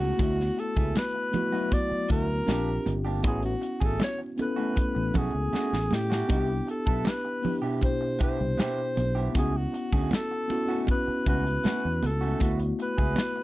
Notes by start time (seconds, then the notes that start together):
Already playing: C#2 B3 C#4 E4 F#4 G#4
0.00 A3 C#4 F#4
0.18 D2 A3 B3 E4 F#4, kick, closed hi-hat, muted conga
0.38 muted clean electric guitar stroke, snare
0.57 A4, muted clean electric guitar stroke, closed hi-hat
0.76 C#2 B3 E4 G#4, kick
0.95 B4, muted clean electric guitar stroke, snare, closed hi-hat, high conga
1.14 muted clean electric guitar stroke
1.31 A3 B3 E4, closed hi-hat, muted conga, low conga
1.36 F#4
1.51 F#3 B3 E4 F#4
1.71 D5, muted clean electric guitar stroke, kick, closed hi-hat, muted conga
1.90 muted clean electric guitar stroke, muted fingered electric bass stroke
2.09 D2 B3 E4 F#4 A#4, kick, closed hi-hat
2.28 muted clean electric guitar stroke
2.45 A#1 A#3 C4 D4 F4 G4, snare, closed hi-hat, high conga
2.50 G4
2.86 G1, muted clean electric guitar stroke, closed hi-hat, high conga
3.05 A#3 D4 G4
3.22 A1 A3 B3 C#4 E4 F#4, kick, closed hi-hat, muted conga
3.27 G#4
3.42 F#4, muted clean electric guitar stroke, closed hi-hat
3.61 muted clean electric guitar stroke, closed hi-hat
3.80 G#1 A3 C#4 G#4, kick
3.85 A4
4.00 muted clean electric guitar stroke, snare, closed hi-hat, high conga
4.04 C#5
4.18 muted clean electric guitar stroke
4.36 B3 C#4 E4, closed hi-hat, muted conga
4.41 A4 B4
4.55 A3 B3 C#4 E4 F#4
4.76 muted clean electric guitar stroke, kick, closed hi-hat, muted conga
4.95 A1, muted clean electric guitar stroke
5.14 B1 A3 C#4 F#4 G#4, kick, closed hi-hat, muted conga, low conga
5.34 C#2, muted clean electric guitar stroke
5.53 A3 C#4 F#4, muted fingered electric bass stroke, snare, high conga
5.73 A1, snare
5.91 A2 G4, muted clean electric guitar stroke, snare, high conga
6.10 A3 C#4 F#4, snare
6.27 C2 B3 D4 E4 G4, kick, closed hi-hat, muted conga
6.31 G4
6.48 muted clean electric guitar stroke
6.67 A4, muted clean electric guitar stroke, closed hi-hat
6.86 B1 B3 E4 A4, kick
7.05 B4, muted clean electric guitar stroke, snare, closed hi-hat, high conga
7.25 muted clean electric guitar stroke
7.42 B3 D4 E4 G4, open hi-hat, muted conga, low conga
7.61 B2 B3 D4 E4 G4
7.65 G4
7.81 C5, muted clean electric guitar stroke, kick, closed hi-hat, muted conga
8.01 muted clean electric guitar stroke
8.19 B3 E4 G4, muted fingered electric bass stroke, kick, closed hi-hat, muted conga
8.23 C5
8.38 C2, muted clean electric guitar stroke
8.57 B3 E4 G4, snare, closed hi-hat, high conga
8.96 B1, muted clean electric guitar stroke, closed hi-hat, high conga
9.15 B3 E4 G4
9.32 C#2 A3 B3 C#4 E4 F#4, kick, closed hi-hat, muted conga
9.38 G#4
9.54 F#4, muted clean electric guitar stroke
9.73 muted clean electric guitar stroke, closed hi-hat
9.93 D2 A3 C#4 G#4, kick
10.11 A4, muted clean electric guitar stroke, snare, closed hi-hat, high conga
10.31 muted clean electric guitar stroke
10.48 B3 C#4 E4 F#4, open hi-hat, muted conga
10.66 B3 C#4 E4 F#4
10.70 A3 F#4
10.87 muted clean electric guitar stroke, kick, closed hi-hat, muted conga
10.91 B4
11.07 muted clean electric guitar stroke, muted fingered electric bass stroke
11.26 C#2 A3 C#4 F#4 B4, kick, closed hi-hat
11.46 muted clean electric guitar stroke, closed hi-hat
11.64 A3 C#4 F#4, snare, closed hi-hat, high conga
11.85 E2
12.03 C#2 A4, muted clean electric guitar stroke, closed hi-hat, high conga
12.21 A3 C#4 F#4
12.39 D2 A3 B3 E4 F#4, kick, closed hi-hat, muted conga
12.59 muted clean electric guitar stroke, closed hi-hat
12.79 B4, muted clean electric guitar stroke, closed hi-hat
12.98 C#2 B3 E4 G#4, kick
13.16 snare, closed hi-hat, high conga
13.36 muted clean electric guitar stroke